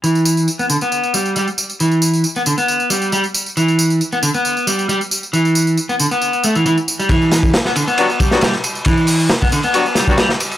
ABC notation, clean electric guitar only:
X:1
M:4/4
L:1/16
Q:1/4=136
K:Em
V:1 name="Clean electric guitar" clef=bass
E,4 z B, D, B,3 G,2 G, z3 | E,4 z B, D, B,3 G,2 G, z3 | E,4 z B, D, B,3 G,2 G, z3 | E,4 z B, D, B,3 A, E, E, z2 G, |
E,4 z B, D, B,3 G,2 G, z3 | E,4 z B, D, B,3 G,2 G, z3 |]